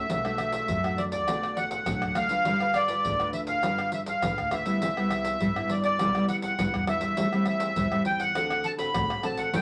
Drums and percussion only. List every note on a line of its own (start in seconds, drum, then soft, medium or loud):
0.10 pandeiro medium
0.10 shaker medium
0.10 surdo medium
0.25 pandeiro soft
0.25 tamborim medium
0.25 shaker soft
0.38 pandeiro medium
0.38 tamborim medium
0.38 shaker medium
0.52 pandeiro medium
0.52 shaker medium
0.68 pandeiro medium
0.68 shaker medium
0.68 surdo medium
0.84 pandeiro soft
0.84 tamborim medium
0.84 shaker soft
0.98 pandeiro medium
1.12 pandeiro medium
1.12 shaker medium
1.12 surdo soft
1.28 pandeiro medium
1.28 tamborim medium
1.28 shaker medium
1.28 surdo soft
1.43 pandeiro soft
1.43 tamborim medium
1.43 shaker soft
1.57 pandeiro medium
1.57 surdo soft
1.71 pandeiro medium
1.71 shaker medium
1.71 surdo soft
1.86 pandeiro medium
1.86 tamborim medium
1.86 shaker medium
1.86 surdo loud
2.02 pandeiro soft
2.02 tamborim medium
2.02 shaker soft
2.02 surdo soft
2.15 pandeiro medium
2.15 tamborim medium
2.15 shaker medium
2.29 pandeiro medium
2.29 shaker medium
2.29 surdo soft
2.45 pandeiro medium
2.45 shaker medium
2.45 surdo medium
2.60 pandeiro soft
2.60 tamborim medium
2.60 shaker soft
2.74 pandeiro medium
2.74 tamborim medium
2.88 pandeiro medium
2.88 shaker medium
3.05 pandeiro medium
3.05 shaker medium
3.05 surdo medium
3.20 pandeiro soft
3.20 tamborim medium
3.20 shaker soft
3.33 pandeiro medium
3.33 shaker medium
3.47 pandeiro medium
3.47 shaker medium
3.47 surdo soft
3.63 pandeiro medium
3.63 tamborim medium
3.63 shaker medium
3.63 surdo medium
3.79 pandeiro soft
3.79 tamborim medium
3.79 shaker soft
3.92 pandeiro medium
3.92 shaker medium
4.06 pandeiro medium
4.06 shaker medium
4.06 surdo soft
4.22 pandeiro medium
4.22 tamborim medium
4.22 shaker medium
4.22 surdo loud
4.38 pandeiro soft
4.38 tamborim medium
4.38 shaker soft
4.38 surdo soft
4.51 pandeiro medium
4.51 tamborim medium
4.51 shaker medium
4.66 pandeiro medium
4.66 shaker medium
4.66 surdo soft
4.82 pandeiro medium
4.82 shaker medium
4.82 surdo medium
4.97 pandeiro soft
4.97 tamborim medium
4.97 shaker soft
5.10 pandeiro medium
5.10 tamborim medium
5.10 shaker medium
5.25 pandeiro medium
5.25 shaker medium
5.40 pandeiro medium
5.40 shaker medium
5.40 surdo medium
5.56 pandeiro soft
5.56 tamborim medium
5.56 shaker soft
5.69 pandeiro medium
5.84 pandeiro medium
5.84 shaker medium
5.84 surdo soft
5.99 pandeiro medium
5.99 tamborim medium
5.99 shaker medium
5.99 surdo medium
6.15 pandeiro soft
6.15 tamborim medium
6.15 shaker soft
6.28 pandeiro medium
6.28 shaker medium
6.42 pandeiro medium
6.42 shaker medium
6.42 surdo soft
6.59 pandeiro medium
6.59 tamborim medium
6.59 shaker medium
6.59 surdo loud
6.74 pandeiro soft
6.74 tamborim medium
6.74 shaker soft
6.74 surdo soft
6.87 pandeiro medium
6.87 tamborim medium
7.01 pandeiro medium
7.01 shaker medium
7.01 surdo soft
7.17 pandeiro medium
7.17 shaker medium
7.17 surdo medium
7.33 pandeiro soft
7.33 tamborim medium
7.33 shaker soft
7.45 pandeiro medium
7.45 tamborim medium
7.60 pandeiro medium
7.60 shaker medium
7.76 pandeiro medium
7.76 shaker medium
7.76 surdo loud
7.92 pandeiro soft
7.92 tamborim medium
7.92 shaker soft
8.05 pandeiro medium
8.20 pandeiro medium
8.20 shaker medium
8.20 surdo soft
8.35 pandeiro medium
8.35 tamborim medium
8.35 shaker medium
8.35 surdo medium
8.50 pandeiro soft
8.50 tamborim medium
8.50 shaker soft
8.64 pandeiro medium
8.64 shaker medium
8.79 pandeiro medium
8.79 shaker medium
8.79 surdo soft
8.94 pandeiro medium
8.94 tamborim medium
8.94 shaker medium
8.94 surdo medium
9.10 pandeiro soft
9.10 tamborim medium
9.10 shaker soft
9.10 surdo soft
9.23 pandeiro medium
9.23 tamborim medium
9.37 pandeiro medium
9.37 shaker medium
9.37 surdo soft
9.54 pandeiro medium
9.54 shaker medium
9.54 surdo medium